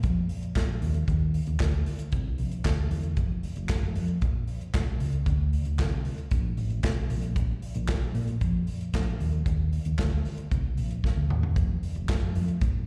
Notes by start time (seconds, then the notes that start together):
0.03 F2, kick, closed hi-hat
0.29 open hi-hat
0.43 closed hi-hat
0.55 A#1, kick, snare, clap, closed hi-hat
0.82 D#2, open hi-hat
0.94 closed hi-hat
1.08 D#2, kick, closed hi-hat
1.34 open hi-hat
1.46 D#2, closed hi-hat
1.60 D2, kick, snare, clap, closed hi-hat
1.86 open hi-hat
1.99 closed hi-hat
2.12 C2, kick, closed hi-hat
2.38 A#1, open hi-hat
2.51 closed hi-hat
2.64 D2, kick, snare, clap, closed hi-hat
2.91 E2, open hi-hat
3.03 closed hi-hat
3.17 F1, kick, closed hi-hat
3.43 open hi-hat
3.56 F1, closed hi-hat
3.69 kick, snare, clap, closed hi-hat
3.83 F1
3.95 F2, open hi-hat
4.08 closed hi-hat
4.21 A#1, kick, closed hi-hat
4.47 open hi-hat
4.61 closed hi-hat
4.73 C2, kick, snare, clap, closed hi-hat
5.00 C#2, open hi-hat
5.12 closed hi-hat
5.26 D2, kick, closed hi-hat
5.53 open hi-hat
5.65 D2, closed hi-hat
5.79 C2, kick, snare, clap, closed hi-hat
6.05 open hi-hat
6.18 closed hi-hat
6.31 A#1, kick, closed hi-hat
6.57 A1, open hi-hat
6.70 closed hi-hat
6.83 C2, kick, snare, clap, closed hi-hat
7.10 A#1, open hi-hat
7.22 closed hi-hat
7.36 kick, closed hi-hat
7.62 open hi-hat
7.74 A#1, closed hi-hat
7.88 kick, snare, clap, closed hi-hat
8.02 A#1
8.15 A#2, open hi-hat
8.28 closed hi-hat
8.41 F2, kick, closed hi-hat
8.67 open hi-hat
8.81 closed hi-hat
8.93 A#1, kick, snare, clap, closed hi-hat
9.20 D#2, open hi-hat
9.33 closed hi-hat
9.46 D#2, kick, closed hi-hat
9.73 open hi-hat
9.85 D#2, closed hi-hat
9.99 D2, kick, snare, clap, closed hi-hat
10.25 open hi-hat
10.38 closed hi-hat
10.51 C2, kick, closed hi-hat
10.77 A#1, open hi-hat
10.91 closed hi-hat
11.04 kick, snare
11.17 D2
11.30 D#2, mid tom
11.43 E2, floor tom
11.56 F1, kick, closed hi-hat
11.83 open hi-hat
11.95 F1, closed hi-hat
12.09 kick, snare, clap, closed hi-hat
12.22 F1
12.35 F2, open hi-hat
12.48 closed hi-hat
12.61 A#1, kick, closed hi-hat